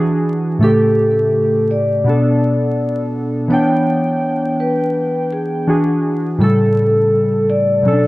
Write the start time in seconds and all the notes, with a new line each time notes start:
Already playing: E3 D4 F#4 G#4
0.58 A2 C#3 A3
0.63 G4 A4
1.71 D5
2.04 B2 B3 D4
2.09 A4
3.48 E3 B3 D4 C#5
3.53 G5
4.60 B4
5.32 G#4
5.67 E3 D4 F#4 G#4
6.38 A2 C#3 G3 A4
6.43 A4
7.50 D5
7.83 B2 F#3 C#4
7.88 A4
7.92 D4